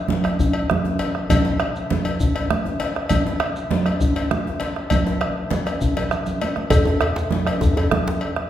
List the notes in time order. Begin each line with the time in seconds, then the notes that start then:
0.09 bombo rim, djembe slap, high conga, low conga
0.24 bombo rim, cowbell, djembe tone
0.39 bombo low, djembe bass, shekere
0.53 bombo rim, cowbell, high conga
0.70 bombo rim, djembe slap, high conga, low conga
0.85 djembe slap, djembe tone, high conga
0.99 cowbell, djembe slap
1.15 bombo rim
1.29 bombo low, cowbell, high conga, djembe bass, low conga, shekere
1.45 djembe slap, djembe tone, high conga
1.60 bombo rim, cowbell
1.76 shekere
1.90 bombo rim, djembe slap, high conga, low conga
2.05 cowbell, djembe tone
2.20 bombo low, djembe bass, shekere
2.35 bombo rim, cowbell, djembe slap, high conga
2.50 bombo rim, djembe slap, high conga, low conga
2.65 djembe slap, djembe tone, high conga
2.80 cowbell, djembe slap
2.96 bombo rim
3.09 bombo low, cowbell, high conga, low conga, djembe bass, shekere
3.27 djembe slap, djembe tone, high conga
3.40 bombo rim, cowbell
3.56 shekere
3.71 bombo rim, djembe slap, high conga, low conga
3.86 bombo rim, cowbell, djembe tone
4.01 bombo low, djembe bass, shekere
4.16 bombo rim, cowbell, djembe slap
4.31 bombo rim, djembe slap, high conga, low conga
4.46 djembe slap, high conga, djembe tone
4.60 cowbell, djembe slap
4.76 bombo rim
4.90 bombo low, cowbell, djembe slap, high conga, low conga, djembe bass, shekere
5.06 bombo rim, djembe slap, high conga, djembe tone
5.21 bombo rim, cowbell, high conga
5.50 bombo rim, djembe slap, high conga, low conga, shekere
5.66 bombo rim, cowbell, djembe tone, shekere
5.81 bombo low, djembe slap, djembe bass, shekere
5.97 cowbell, djembe slap, low conga
6.11 bombo rim, low conga, shekere
6.26 bombo rim, djembe tone, low conga, shekere
6.41 cowbell, djembe slap, high conga
6.56 bombo rim, djembe slap, high conga
6.70 bombo low, cowbell, high conga, djembe tone, low conga, djembe bass, shekere
6.86 djembe slap, djembe tone, high conga
6.87 djembe tone
7.01 bombo rim, cowbell, djembe tone
7.16 djembe slap, shekere
7.31 bombo rim, djembe slap, high conga, low conga
7.47 bombo rim, cowbell, djembe tone
7.61 bombo low, djembe tone, djembe bass, shekere
7.76 bombo rim, cowbell, djembe slap, high conga, djembe tone
7.91 bombo rim, djembe slap, high conga, djembe tone, low conga
8.07 djembe slap, djembe tone, high conga
8.21 cowbell
8.36 bombo rim